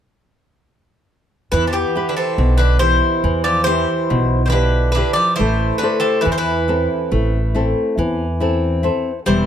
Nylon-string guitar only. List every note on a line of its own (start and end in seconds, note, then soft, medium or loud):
1.53 2.36 E3 medium
1.95 2.65 E4 soft
1.95 2.65 G4 soft
1.95 2.65 B4 medium
2.38 3.22 B2 medium
2.80 3.50 E4 soft
2.80 3.50 G4 soft
3.24 4.08 E3 medium
3.67 4.36 E4 soft
3.67 4.36 G4 soft
4.10 4.94 B2 medium
4.53 4.95 E4 soft
4.53 4.96 G4 soft
4.53 4.96 B4 medium
4.96 5.31 E4 soft
4.96 5.32 G4 soft
4.96 5.31 B4 medium
5.40 6.23 A3 medium
5.83 6.52 E4 soft
5.83 6.52 A4 soft
5.83 6.52 C5 medium
6.25 7.09 E3 medium
6.68 7.38 C4 soft
6.68 7.37 E4 soft
6.68 7.38 A4 soft
7.12 7.95 A3 medium
7.55 8.24 C4 medium
7.55 8.24 E4 soft
7.55 8.24 A4 soft
7.98 8.82 E3 medium
8.40 9.10 C4 medium
8.40 8.82 E4 soft
8.40 8.83 A4 soft
8.83 9.18 E4 soft
8.83 9.18 A4 soft
8.83 9.18 C5 medium
9.26 9.46 G3 medium